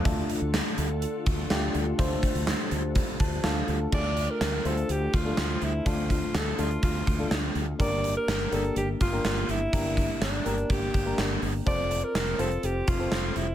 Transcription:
<<
  \new Staff \with { instrumentName = "Alto saxophone" } { \time 4/4 \key d \minor \tempo 4 = 124 r1 | r1 | d''8. bes'8. a'8 g'8 f'4 e'8 | f'8 f'8 a'8 f'8 f'4. r8 |
d''8. bes'8. a'8 g'8 f'4 e'8~ | e'4 d'4 g'4. r8 | d''8. bes'8. a'8 g'8 f'4 e'8 | }
  \new Staff \with { instrumentName = "FM electric piano" } { \time 4/4 \key d \minor << { r1 | r2 r8 a''8 f''4 | r1 | r1 |
r1 | r1 | r1 | } \\ { <a d' f' a'>4~ <a d' f' a'>16 r4. r16 <a d' f' g'>8. r16 | <a d' f' c''>4~ <a d' f' c''>16 r4. r16 <a d' f' a'>8. r16 | <a d' f' gis' a'>4 r8 <a d' f' c''>8. r8 <a d' f' a'>8. r8 | <a d' f' a'>4 r8 <a d' f' a'>8. r8 <a d' f' a'>8. r8 |
<bes d' g' bes'>4 r8 <bes d' g' bes'>8. r8 <bes d' g' bes'>8. r8 | <bes d' g' bes'>4 r8 <bes d' g' bes'>8. r8 <bes d' g' bes'>8. r8 | <c' f' a' c''>4 r8 <c' f' a' c''>8. r8 <c' f' a' c''>8. r8 | } >> }
  \new Staff \with { instrumentName = "Ambient pad" } { \time 4/4 \key d \minor <d d' f' a'>1~ | <d d' f' a'>1 | r1 | r1 |
r1 | r1 | r1 | }
  \new Staff \with { instrumentName = "Fretless electric bass" } { \clef bass \time 4/4 \key d \minor d,8 r16 d,8 r16 d,8. r16 d,8 d,8 d,8 | d,8 r16 d,8 r16 d,8. r16 d,8 d,8 d,8 | d,4 d,8 d,8 d,8 d,8 d,8 d,8 | d,4 d,8 d,8 d,8 d,8 d,8 d,8 |
g,,4 g,,8 g,,8 g,,8 g,,8 g,,8 g,,8 | g,,4 g,,8 g,,8 g,,8 g,,8 g,,8 g,,8 | f,,4 f,,8 f,,8 f,,8 f,,8 f,,8 f,,8 | }
  \new DrumStaff \with { instrumentName = "Drums" } \drummode { \time 4/4 <hh bd>8 hh8 <hh sn>8 hh8 hh8 <hh bd>8 <hh sn>8 hh8 | <hh bd>8 <hh bd>16 hh16 <hh sn>8 hh8 <hh bd>8 <hh bd>8 <hh sn>8 hh8 | <cymc bd>8 hh8 <hh sn>8 hh16 hh16 hh8 <hh bd>8 <hh sn>8 hh8 | <hh bd>8 <hh bd>8 <hh sn>8 hh16 hh16 <hh bd>8 <hh bd>8 <hh sn>8 hh8 |
<hh bd>8 hh8 <hh sn>8 hh16 hh16 hh8 <hh bd>8 <hh sn>8 hh8 | <hh bd>8 <hh bd>8 <hh sn>8 hh16 hh16 <hh bd>8 <hh bd>8 <hh sn>8 hho8 | <hh bd>8 hh8 <hh sn>8 hh16 hh16 hh8 <hh bd>8 <hh sn>8 hh8 | }
>>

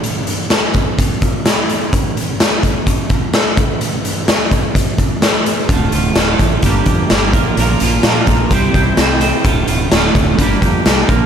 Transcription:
<<
  \new Staff \with { instrumentName = "Clean electric guitar" } { \time 4/4 \key d \minor \tempo 4 = 128 r1 | r1 | r1 | <d, a, d a f'>8 <d a f'>8 <d, a, d a f'>4 <g, d g bes d' g'>8 <g bes d' g'>8 <g bes d' g'>8 <bes, f bes d' f' bes'>8 |
<bes, f bes d' f' bes'>8 <bes d' f' bes'>8 <bes, f bes d' f' bes'>4 <c g c' e' g' c''>8 <c' e' g' c''>8 <c' e' g' c''>8 <c' e' g' c''>8 | <d, a, d a f'>8 <d a f'>8 <d, a, d a f'>4 <g, d g bes d' g'>8 <g bes d' g'>8 <g bes d' g'>8 <bes, f bes d' f' bes'>8 | }
  \new Staff \with { instrumentName = "Fingered electric bass" } { \clef bass \time 4/4 \key d \minor r1 | r1 | r1 | d,,8 d,,8 d,,8 a,,8 g,,8 f,8 g,,8 bes,,8 |
bes,,8 bes,,8 bes,8 bes,,8 c,8 c,8 c,4 | d,,8 d,,8 d,,8 d,,8 g,,8 f,8 c,8 bes,,8 | }
  \new DrumStaff \with { instrumentName = "Drums" } \drummode { \time 4/4 hh8 hh8 <hh sn>8 <hh bd>8 <hh bd>8 <hh bd>8 <hh sn>8 hh8 | <hh bd>8 hh8 <hh sn>8 <hh bd>8 <hh bd>8 <hh bd>8 <hh sn>8 <hh bd>8 | hh8 hh8 <hh sn>8 <hh bd>8 <hh bd>8 <hh bd>8 <hh sn>8 hh8 | <hh bd>8 hh8 <hh sn>8 <hh bd>8 <hh bd>8 <hh bd>8 <hh sn>8 <hh bd>8 |
hh8 hh8 <hh sn>8 <hh bd>8 <hh bd>8 <hh bd>8 <hh sn>8 hh8 | <hh bd>8 hh8 <hh sn>8 <hh bd>8 <hh bd>8 <hh bd>8 <hh sn>8 <hh bd>8 | }
>>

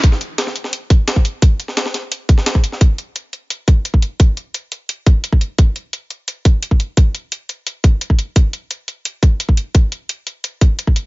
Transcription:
\new DrumStaff \with { instrumentName = "Drums" } \drummode { \time 4/4 \tempo 4 = 173 <hh bd>16 sn16 hh8 <hh sn>16 sn16 hh16 sn16 hh8 <hh bd>8 <hh sn>16 bd16 hh8 | <hh bd>8 hh16 sn16 <hh sn>16 sn16 <hh sn>8 hh8 <hh bd>16 sn16 <hh sn>16 bd16 hh16 sn16 | <hh bd>8 hh8 hh8 hh8 hh8 <hh bd>8 hh16 bd16 hh8 | <hh bd>8 hh8 hh8 hh8 hh8 <hh bd>8 hh16 bd16 hh8 |
<hh bd>8 hh8 hh8 hh8 hh8 <hh bd>8 hh16 bd16 hh8 | <hh bd>8 hh8 hh8 hh8 hh8 <hh bd>8 hh16 bd16 hh8 | <hh bd>8 hh8 hh8 hh8 hh8 <hh bd>8 hh16 bd16 hh8 | <hh bd>8 hh8 hh8 hh8 hh8 <hh bd>8 hh16 bd16 hh8 | }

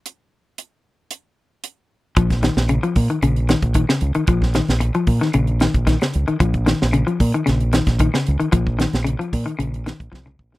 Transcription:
<<
  \new Staff \with { instrumentName = "Clean electric guitar" } { \clef bass \time 4/4 \key bes \minor \tempo 4 = 113 r1 | f8 ees8 des16 f8 ees16 des8 ees8 ees16 des8 ees16 | f8 ees8 r16 f8 ees16 des8 ees8 ees16 des8 ees16 | f8 ees8 des16 f8 ees16 des8 ees8 ees16 des8 ees16 |
f8 ees8 des16 f8 ees16 des8 ees8 f16 des8 ees16 | }
  \new Staff \with { instrumentName = "Fingered electric bass" } { \clef bass \time 4/4 \key bes \minor r1 | bes,,8. bes,,8 r16 bes,16 r16 bes,,8. bes,,8 r16 des,16 r16 | bes,,8. bes,,8 r16 bes,16 r16 bes,,8. bes,,8 r16 des,16 r16 | bes,,8. bes,,8 r16 bes,16 r16 bes,,8. bes,,8 r16 des,16 r16 |
bes,,8. bes,,8 r16 bes,16 r16 bes,,8. bes,,16 c,8 bes,,8 | }
  \new DrumStaff \with { instrumentName = "Drums" } \drummode { \time 4/4 hh4 hh4 hh4 hh4 | <hh bd>16 <hh bd sn>16 <hh sn>16 sn16 hh16 hh16 <hho bd>16 hh16 hh16 hh16 <hh sn>16 <hh bd>16 <hh bd>16 sn16 hh16 hh16 | <hh bd>16 <bd sn>16 <hh sn>16 <hh sn>16 hh16 hh16 <hho bd>16 <hh sn>16 hh16 hh16 <hh sn>16 <hh bd>16 <hh bd sn>16 <hh sn>16 hh16 hh16 | <hh bd>16 <hh bd>16 <hh sn>16 sn16 hh16 hh16 <hho bd>16 hh16 <hh sn>16 hh16 <hh sn>16 <hh bd sn>16 <hh bd>16 sn16 hh16 hh16 |
<hh bd>16 bd16 <hh sn>16 <hh sn>16 hh16 hh16 <hho bd>16 hh16 hh16 hh16 <hh sn>16 <hh bd>16 <bd sn>16 toml16 bd16 sn16 | }
>>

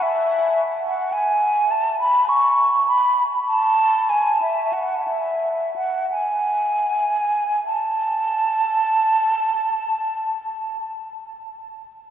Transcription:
\new Staff \with { instrumentName = "Flute" } { \time 3/4 \key a \major \tempo 4 = 44 e''8. fis''16 gis''8 a''16 b''16 cis'''8 b''16 r16 | a''8 gis''16 e''16 fis''16 e''8 fis''16 gis''4 | a''2. | }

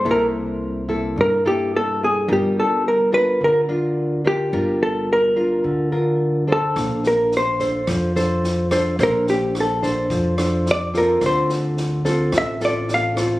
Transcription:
<<
  \new Staff \with { instrumentName = "Hollow-body jazz guitar" } { \time 4/4 \key g \dorian \tempo 4 = 108 bes'8 r4. bes'8 g'8 a'8 aes'8 | g'8 a'8 bes'8 b'8 bes'8 r4 g'8~ | g'8 a'8 bes'4 r4. a'8~ | a'8 bes'8 c''4 r2 |
bes'8 g'8 a'8 r4. d''8 bes'8 | c''8 r4. e''8 d''8 f''8 r8 | }
  \new Staff \with { instrumentName = "Nylon-string guitar" } { \time 4/4 \key g \dorian << { <bes e' a'>4. <bes e' a'>4 <bes e' a'>4. | <d' f' bes'>4 r8 <d' f' bes'>4 <d' f' bes'>4 <d' f' bes'>8 | <d' f' bes'>4. <d' f' bes'>4 <d' f' bes'>4 <d' a' c''>8~ | <d' a' c''>4. <d' a' c''>4 <d' a' c''>4 <d' a' c''>8 |
<d' a' c''>4. <d' a' c''>4 <d' a' c''>4 <c' f' a'>8~ | <c' f' a'>4. <c' f' a'>4 <c' f' a'>4 <c' f' a'>8 | } \\ { c2 g,2 | g2 d2 | g2 d2 | bes2 f2 |
bes2 f2 | d2 a,2 | } >> }
  \new Staff \with { instrumentName = "Upright bass" } { \clef bass \time 4/4 \key g \dorian c,2 g,2 | g,,2 d,2 | g,,2 d,2 | bes,,2 f,2 |
bes,,2 f,2 | d,2 a,,2 | }
  \new DrumStaff \with { instrumentName = "Drums" } \drummode { \time 4/4 r4 r4 r4 r4 | r4 r4 r4 r4 | r4 r4 r4 r4 | <bd ss sn>8 sn8 sn8 <bd sn>8 <bd ss sn>8 sn8 sn8 <bd ss sn>8 |
<bd sn>8 sn8 <ss sn>8 <bd sn>8 <bd sn>8 <ss sn>8 sn8 <bd sn>8 | <bd ss sn>8 sn8 sn8 <bd sn>8 <bd ss sn>8 sn8 sn8 <bd ss sn>8 | }
>>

